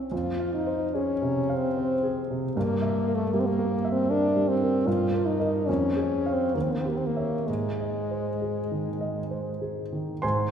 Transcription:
0.12 grand piano F2, french horn F4
0.40 grand piano F5
0.54 french horn D#4
0.67 grand piano C5
0.95 french horn C#4, grand piano G#4
1.22 grand piano C3
1.49 grand piano F5
1.56 french horn C4
1.77 grand piano C5
2.03 grand piano G#4
2.31 grand piano C3
2.55 grand piano G2, french horn A#3
2.82 grand piano E5
3.08 grand piano A#4
3.15 french horn A3
3.33 grand piano G3, french horn A#3
3.40 french horn C4
3.46 french horn A#3
3.59 grand piano A#4
3.84 grand piano E5
3.92 french horn C4
4.10 french horn D4, grand piano A#4
4.36 grand piano G3
4.48 french horn C4
4.62 grand piano A#4
4.87 grand piano G2, french horn F4
5.13 grand piano A#4
5.26 french horn D#4
5.39 grand piano A#4 D#5
5.67 grand piano F2, french horn C#4
5.96 grand piano G#4
6.26 grand piano C#5 F5
6.33 french horn C4
6.55 grand piano D#2, french horn A#3
6.63 french horn C4
6.72 french horn A#3
6.81 french horn C4
6.85 french horn A#3, grand piano G4
6.97 french horn C4
7.06 french horn A#3
7.16 grand piano C#5 E5
7.47 grand piano G#2, french horn G#3
7.81 grand piano D#5
8.11 grand piano C5
8.42 grand piano G#4
8.71 grand piano D#3
9.01 grand piano D#5
9.31 grand piano C5
9.62 grand piano G#4
9.93 grand piano D#3
10.22 grand piano G#2 C5 G#5 C6

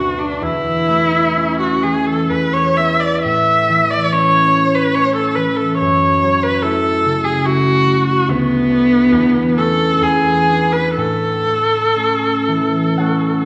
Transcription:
Already playing: harp D2 F#3 B3 D4, viola F#4
0.19 viola D4
0.41 harp E2, viola E4
0.88 harp A3
1.36 harp C#4
1.60 viola F#4
1.83 harp E3, viola G#4
2.07 viola A4
2.29 harp E2, viola B4
2.53 viola C#5
2.77 harp B3 E4, viola E5
3.00 viola D5
3.22 harp A2, viola E5
3.69 harp E3
3.90 viola D5
4.12 harp C#4 E4, viola C#5
4.53 harp A3
4.75 viola B4
4.95 harp C#4 E4, viola C#5
5.15 viola A4
5.35 harp E3, viola B4
5.56 viola A4
5.78 harp F#2, viola C#5
6.23 harp F#3
6.43 viola B4
6.62 harp A3 E4, viola A4
7.05 harp C#3
7.24 viola G#4
7.45 harp A3 E4, viola F#4
7.85 harp F#3
8.08 viola F#4
8.28 harp D2, viola B3
8.69 harp A3 D4
9.12 harp E2
9.56 harp A3 C#4, viola A4
10.01 harp E2, viola G#4
10.48 harp B3 D4
10.73 viola B4
10.97 harp A2, viola A4
11.46 harp A3
11.95 harp A3 C#4
12.48 harp E3
12.98 harp A3 C#4 A4 C#5 F#5

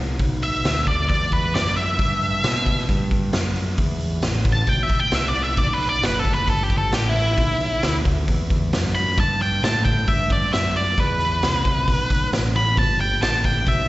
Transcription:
Already playing: picked electric bass C2
0.19 picked electric bass B1, kick, open hi-hat
0.42 lead electric guitar E5, open hi-hat
0.64 picked electric bass D2, snare, open hi-hat
0.87 lead electric guitar D5, kick, open hi-hat
1.09 picked electric bass E2, lead electric guitar D5, kick, open hi-hat
1.32 lead electric guitar B4, kick, open hi-hat
1.54 picked electric bass F#2, lead electric guitar D5, snare, open hi-hat
1.66 snare
1.77 lead electric guitar E5, open hi-hat
1.99 picked electric bass G2, kick, open hi-hat
2.22 open hi-hat
2.44 picked electric bass B2, snare, open hi-hat
2.66 kick, open hi-hat
2.79 snare
2.89 picked electric bass G2, kick, open hi-hat
3.11 kick, open hi-hat
3.33 picked electric bass F#2, snare, open hi-hat
3.56 open hi-hat
3.78 picked electric bass E2, kick, open hi-hat
4.00 open hi-hat
4.22 picked electric bass A1, snare, open hi-hat
4.45 kick, open hi-hat
4.52 lead electric guitar A5
4.67 picked electric bass B1, lead electric guitar G5, kick, open hi-hat
4.83 lead electric guitar E5
4.89 muted picked electric bass stroke, kick, open hi-hat
5.00 lead electric guitar G5
5.11 picked electric bass C2, lead electric guitar E5, snare, open hi-hat
5.28 lead electric guitar D5
5.35 open hi-hat
5.44 lead electric guitar E5
5.57 picked electric bass B1, lead electric guitar D5, kick, open hi-hat
5.74 lead electric guitar B4
5.80 open hi-hat
5.89 lead electric guitar D5
6.02 picked electric bass F#1, lead electric guitar B4, snare, open hi-hat
6.19 lead electric guitar A4
6.25 kick, open hi-hat
6.34 lead electric guitar B4
6.47 picked electric bass G1, lead electric guitar A4, kick, open hi-hat
6.63 lead electric guitar G4
6.70 kick, open hi-hat
6.78 lead electric guitar A4
6.92 picked electric bass A1, lead electric guitar G4, snare, open hi-hat
7.09 lead electric guitar E4
7.15 open hi-hat
7.37 picked electric bass B1, kick, open hi-hat
7.60 open hi-hat
7.83 picked electric bass D2, snare, open hi-hat
8.05 kick, open hi-hat
8.28 picked electric bass E2, kick, open hi-hat
8.50 kick, open hi-hat
8.73 picked electric bass F#2, snare, open hi-hat
8.85 snare
8.95 lead electric guitar B5, open hi-hat
9.18 picked electric bass G2, lead electric guitar A5, kick, open hi-hat
9.41 lead electric guitar G5, open hi-hat
9.63 picked electric bass A2, lead electric guitar A5, snare, open hi-hat
9.85 lead electric guitar G5, kick, open hi-hat
10.08 picked electric bass G2, lead electric guitar E5, kick, open hi-hat
10.30 lead electric guitar D5, kick, open hi-hat
10.53 picked electric bass F#2, lead electric guitar E5, snare, open hi-hat
10.76 lead electric guitar D5, open hi-hat
10.98 picked electric bass E2, lead electric guitar B4, kick, open hi-hat
11.20 open hi-hat
11.43 picked electric bass C2, snare, open hi-hat
11.65 kick, open hi-hat
11.88 picked electric bass B1, kick, open hi-hat
12.10 kick, open hi-hat
12.33 picked electric bass A1, snare, open hi-hat
12.55 lead electric guitar B5, open hi-hat
12.77 picked electric bass G1, lead electric guitar A5, kick, open hi-hat
13.00 lead electric guitar G5, open hi-hat
13.21 picked electric bass A1, lead electric guitar A5, snare, open hi-hat
13.44 lead electric guitar G5, kick, open hi-hat
13.67 picked electric bass B1, lead electric guitar E5, kick, open hi-hat

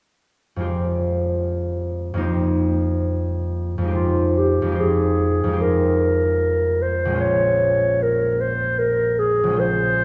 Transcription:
0.56 harp F2 G#3 F4
0.62 harp G4 C5
2.14 harp F2 A#3 D#4
2.19 harp G4 C5
3.78 harp F2 G#3
3.85 harp D#4 G4
3.91 clarinet F4, harp C5
4.38 clarinet G4
4.62 harp F2 G#3
4.69 harp D#4 G4
4.75 harp C5
4.80 clarinet G#4
5.44 harp F2 G#3
5.50 harp D#4 G4
5.57 harp C5
5.61 clarinet A#4
6.82 clarinet C5
7.05 harp A#1 G#3
7.12 harp C#4 F4
7.18 harp C5, clarinet C#5
8.02 clarinet A#4
8.40 clarinet C5
8.79 clarinet A#4
9.19 clarinet G#4
9.44 harp A#1 G#3
9.50 harp C#4 F4
9.57 harp C5, clarinet C5

